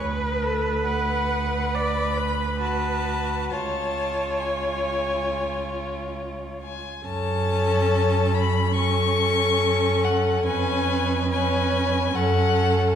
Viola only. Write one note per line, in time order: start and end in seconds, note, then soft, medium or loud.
0.00 1.76 B4 medium
1.74 2.18 D5 medium
2.17 3.52 B4 medium
3.51 6.63 C#5 medium
7.07 8.73 C#4 medium
8.75 10.43 C#4 medium
10.46 11.28 C#4 medium
11.29 12.12 C#4 medium
12.14 12.95 C#4 medium